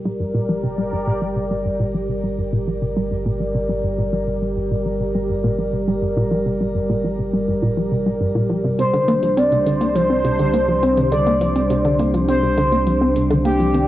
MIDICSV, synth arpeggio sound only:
0, 0, Header, 1, 2, 480
1, 0, Start_track
1, 0, Tempo, 582524
1, 1484, Time_signature, 4, 2, 24, 8
1, 11434, End_track
2, 0, Start_track
2, 0, Title_t, "Synth arpeggio sound"
2, 0, Program_c, 0, 84
2, 44, Note_on_c, 0, 55, 79
2, 154, Note_off_c, 0, 55, 0
2, 163, Note_on_c, 0, 43, 70
2, 237, Note_off_c, 0, 43, 0
2, 283, Note_on_c, 0, 46, 93
2, 394, Note_off_c, 0, 46, 0
2, 404, Note_on_c, 0, 53, 75
2, 477, Note_off_c, 0, 53, 0
2, 524, Note_on_c, 0, 48, 76
2, 568, Note_off_c, 0, 48, 0
2, 643, Note_on_c, 0, 55, 73
2, 754, Note_off_c, 0, 55, 0
2, 764, Note_on_c, 0, 43, 74
2, 838, Note_off_c, 0, 43, 0
2, 883, Note_on_c, 0, 46, 97
2, 994, Note_off_c, 0, 46, 0
2, 1004, Note_on_c, 0, 53, 75
2, 1077, Note_off_c, 0, 53, 0
2, 1124, Note_on_c, 0, 48, 74
2, 1168, Note_off_c, 0, 48, 0
2, 1244, Note_on_c, 0, 55, 73
2, 1354, Note_off_c, 0, 55, 0
2, 1364, Note_on_c, 0, 43, 75
2, 1438, Note_off_c, 0, 43, 0
2, 1483, Note_on_c, 0, 46, 94
2, 1594, Note_off_c, 0, 46, 0
2, 1604, Note_on_c, 0, 53, 72
2, 1678, Note_off_c, 0, 53, 0
2, 1724, Note_on_c, 0, 48, 73
2, 1768, Note_off_c, 0, 48, 0
2, 1844, Note_on_c, 0, 55, 73
2, 1954, Note_off_c, 0, 55, 0
2, 1964, Note_on_c, 0, 43, 81
2, 2038, Note_off_c, 0, 43, 0
2, 2083, Note_on_c, 0, 46, 99
2, 2194, Note_off_c, 0, 46, 0
2, 2204, Note_on_c, 0, 53, 72
2, 2278, Note_off_c, 0, 53, 0
2, 2324, Note_on_c, 0, 48, 71
2, 2368, Note_off_c, 0, 48, 0
2, 2444, Note_on_c, 0, 55, 77
2, 2555, Note_off_c, 0, 55, 0
2, 2564, Note_on_c, 0, 43, 75
2, 2638, Note_off_c, 0, 43, 0
2, 2683, Note_on_c, 0, 46, 97
2, 2794, Note_off_c, 0, 46, 0
2, 2803, Note_on_c, 0, 53, 73
2, 2877, Note_off_c, 0, 53, 0
2, 2923, Note_on_c, 0, 48, 80
2, 2968, Note_off_c, 0, 48, 0
2, 3042, Note_on_c, 0, 55, 76
2, 3153, Note_off_c, 0, 55, 0
2, 3162, Note_on_c, 0, 43, 74
2, 3237, Note_off_c, 0, 43, 0
2, 3283, Note_on_c, 0, 46, 98
2, 3394, Note_off_c, 0, 46, 0
2, 3402, Note_on_c, 0, 53, 77
2, 3477, Note_off_c, 0, 53, 0
2, 3522, Note_on_c, 0, 48, 75
2, 3567, Note_off_c, 0, 48, 0
2, 3643, Note_on_c, 0, 55, 75
2, 3754, Note_off_c, 0, 55, 0
2, 3762, Note_on_c, 0, 43, 71
2, 3837, Note_off_c, 0, 43, 0
2, 3883, Note_on_c, 0, 46, 97
2, 3994, Note_off_c, 0, 46, 0
2, 4003, Note_on_c, 0, 53, 71
2, 4077, Note_off_c, 0, 53, 0
2, 4122, Note_on_c, 0, 48, 71
2, 4167, Note_off_c, 0, 48, 0
2, 4242, Note_on_c, 0, 55, 73
2, 4354, Note_off_c, 0, 55, 0
2, 4362, Note_on_c, 0, 43, 76
2, 4437, Note_off_c, 0, 43, 0
2, 4482, Note_on_c, 0, 46, 99
2, 4594, Note_off_c, 0, 46, 0
2, 4602, Note_on_c, 0, 53, 73
2, 4677, Note_off_c, 0, 53, 0
2, 4721, Note_on_c, 0, 48, 71
2, 4767, Note_off_c, 0, 48, 0
2, 4842, Note_on_c, 0, 55, 78
2, 4953, Note_off_c, 0, 55, 0
2, 4961, Note_on_c, 0, 43, 74
2, 5036, Note_off_c, 0, 43, 0
2, 5082, Note_on_c, 0, 46, 97
2, 5194, Note_off_c, 0, 46, 0
2, 5202, Note_on_c, 0, 53, 75
2, 5277, Note_off_c, 0, 53, 0
2, 5323, Note_on_c, 0, 48, 79
2, 5368, Note_off_c, 0, 48, 0
2, 5444, Note_on_c, 0, 55, 72
2, 5554, Note_off_c, 0, 55, 0
2, 5563, Note_on_c, 0, 43, 74
2, 5637, Note_off_c, 0, 43, 0
2, 5683, Note_on_c, 0, 46, 97
2, 5794, Note_off_c, 0, 46, 0
2, 5804, Note_on_c, 0, 53, 82
2, 5877, Note_off_c, 0, 53, 0
2, 5923, Note_on_c, 0, 48, 73
2, 5967, Note_off_c, 0, 48, 0
2, 6042, Note_on_c, 0, 55, 71
2, 6154, Note_off_c, 0, 55, 0
2, 6163, Note_on_c, 0, 43, 74
2, 6237, Note_off_c, 0, 43, 0
2, 6283, Note_on_c, 0, 46, 97
2, 6394, Note_off_c, 0, 46, 0
2, 6404, Note_on_c, 0, 53, 74
2, 6477, Note_off_c, 0, 53, 0
2, 6523, Note_on_c, 0, 48, 75
2, 6568, Note_off_c, 0, 48, 0
2, 6644, Note_on_c, 0, 55, 74
2, 6754, Note_off_c, 0, 55, 0
2, 6763, Note_on_c, 0, 43, 77
2, 6837, Note_off_c, 0, 43, 0
2, 6883, Note_on_c, 0, 46, 98
2, 6994, Note_off_c, 0, 46, 0
2, 7002, Note_on_c, 0, 53, 75
2, 7077, Note_off_c, 0, 53, 0
2, 7122, Note_on_c, 0, 48, 72
2, 7167, Note_off_c, 0, 48, 0
2, 7242, Note_on_c, 0, 48, 78
2, 7317, Note_off_c, 0, 48, 0
2, 7362, Note_on_c, 0, 50, 97
2, 7474, Note_off_c, 0, 50, 0
2, 7482, Note_on_c, 0, 58, 75
2, 7527, Note_off_c, 0, 58, 0
2, 7602, Note_on_c, 0, 53, 75
2, 7647, Note_off_c, 0, 53, 0
2, 7722, Note_on_c, 0, 60, 82
2, 7833, Note_off_c, 0, 60, 0
2, 7843, Note_on_c, 0, 48, 71
2, 7917, Note_off_c, 0, 48, 0
2, 7962, Note_on_c, 0, 50, 93
2, 8073, Note_off_c, 0, 50, 0
2, 8082, Note_on_c, 0, 58, 71
2, 8127, Note_off_c, 0, 58, 0
2, 8202, Note_on_c, 0, 53, 75
2, 8247, Note_off_c, 0, 53, 0
2, 8321, Note_on_c, 0, 60, 75
2, 8433, Note_off_c, 0, 60, 0
2, 8442, Note_on_c, 0, 48, 77
2, 8517, Note_off_c, 0, 48, 0
2, 8563, Note_on_c, 0, 50, 96
2, 8674, Note_off_c, 0, 50, 0
2, 8683, Note_on_c, 0, 58, 76
2, 8727, Note_off_c, 0, 58, 0
2, 8803, Note_on_c, 0, 53, 74
2, 8848, Note_off_c, 0, 53, 0
2, 8923, Note_on_c, 0, 60, 77
2, 9034, Note_off_c, 0, 60, 0
2, 9043, Note_on_c, 0, 48, 74
2, 9117, Note_off_c, 0, 48, 0
2, 9161, Note_on_c, 0, 50, 96
2, 9273, Note_off_c, 0, 50, 0
2, 9283, Note_on_c, 0, 58, 76
2, 9328, Note_off_c, 0, 58, 0
2, 9403, Note_on_c, 0, 53, 74
2, 9447, Note_off_c, 0, 53, 0
2, 9523, Note_on_c, 0, 60, 72
2, 9634, Note_off_c, 0, 60, 0
2, 9643, Note_on_c, 0, 48, 82
2, 9717, Note_off_c, 0, 48, 0
2, 9763, Note_on_c, 0, 50, 99
2, 9874, Note_off_c, 0, 50, 0
2, 9883, Note_on_c, 0, 58, 73
2, 9928, Note_off_c, 0, 58, 0
2, 10004, Note_on_c, 0, 53, 72
2, 10048, Note_off_c, 0, 53, 0
2, 10123, Note_on_c, 0, 60, 78
2, 10234, Note_off_c, 0, 60, 0
2, 10244, Note_on_c, 0, 48, 72
2, 10317, Note_off_c, 0, 48, 0
2, 10363, Note_on_c, 0, 50, 100
2, 10474, Note_off_c, 0, 50, 0
2, 10484, Note_on_c, 0, 58, 71
2, 10528, Note_off_c, 0, 58, 0
2, 10603, Note_on_c, 0, 53, 76
2, 10648, Note_off_c, 0, 53, 0
2, 10724, Note_on_c, 0, 60, 75
2, 10835, Note_off_c, 0, 60, 0
2, 10845, Note_on_c, 0, 48, 74
2, 10918, Note_off_c, 0, 48, 0
2, 10964, Note_on_c, 0, 50, 102
2, 11074, Note_off_c, 0, 50, 0
2, 11084, Note_on_c, 0, 58, 80
2, 11128, Note_off_c, 0, 58, 0
2, 11203, Note_on_c, 0, 53, 74
2, 11248, Note_off_c, 0, 53, 0
2, 11323, Note_on_c, 0, 60, 71
2, 11434, Note_off_c, 0, 60, 0
2, 11434, End_track
0, 0, End_of_file